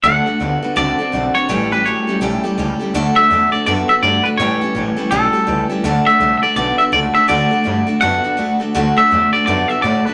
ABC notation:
X:1
M:4/4
L:1/16
Q:"Swing" 1/4=166
K:D
V:1 name="Clean electric guitar"
f8 d6 c2- | c2 B2 c4 z8 | z2 e4 d2 d2 e2 d2 B2 | c8 A6 z2 |
z2 e3- e/2 e/2 d2 d2 e2 d2 e2 | d8 f6 z2 | z2 e4 d2 d2 e2 d2 B2 |]
V:2 name="Steel-string acoustic guitar"
[D,A,DFA]2 [DFA]2 [A,DFA]2 [DFA]2 [D,A,DFA]2 [DFA]2 [A,DFA]2 [DFA]2 | [A,,E,G,CGA]2 [G,CGA]2 [G,CGA]2 [G,CGA]2 [A,,E,G,CGA]2 [G,CGA]2 [G,CGA]2 [G,CGA]2 | [D,A,DFA]2 [DFA]2 [A,DFA]2 [DFA]2 [D,A,DFA]2 [DFA]2 [A,DFA]2 [DFA]2 | [A,,E,G,CGA]2 [G,CGA]2 [G,CGA]2 [G,CGA]2 [A,,E,G,CGA]2 [G,CGA]2 [G,CGA]2 [G,CGA]2 |
[D,A,DFA]2 [DFA]2 [A,DFA]2 [DFA]2 [D,A,DFA]2 [DFA]2 [A,DFA]2 [DFA]2 | [D,A,DFA]2 [DFA]2 [A,DFA]2 [DFA]2 [D,A,DFA]2 [DFA]2 [A,DFA]2 [DFA]2 | [D,A,DFA]2 [DFA]2 [A,DFA]2 [DFA]2 [D,A,DFA]2 [DFA]2 [A,DFA]2 [DFA]2 |]
V:3 name="Clean electric guitar" clef=bass
[D,A,]2 [D,A,]2 [D,B,]2 [D,B,]2 [D,=C]2 [D,C]2 [D,C]2 [D,C]2 | [A,,E,]2 [A,,E,]2 [A,,F,]2 [A,,F,]2 [A,,G,]2 [A,,G,]2 [A,,G,]2 [A,,G,]2 | [D,A,]4 [D,A,]2 [D,A,]2 [D,B,]4 [D,A,]2 [D,A,]2 | [A,,E,]4 [A,,E,]2 [A,,E,]2 [A,,F,]4 [A,,E,]2 [A,,E,]2 |
[D,A,]4 [D,A,]2 [D,A,]2 [D,B,]4 [D,A,]2 [D,A,]2 | [D,A,]4 [D,A,]2 [D,A,]2 [D,B,]4 [D,A,]2 [D,A,]2 | [D,A,]4 [D,A,]2 [D,A,]2 [D,B,]4 [D,A,]2 [D,A,]2 |]
V:4 name="Upright bass" clef=bass
D,,2 z2 D,,2 z2 C,,2 z2 B,,,2 z2 | A,,,6 z2 B,,,2 z2 C,,2 z2 | D,,2 z2 E,,2 z2 F,,2 z2 G,,2 z2 | A,,2 z2 A,,,2 z2 B,,,2 z2 C,,2 z2 |
D,,2 z2 =C,,2 z2 B,,,2 z2 ^C,,2 z2 | D,,2 z2 G,,2 z2 F,,2 z2 E,,2 z2 | D,,2 z2 E,,2 z2 F,,2 z2 A,,2 z2 |]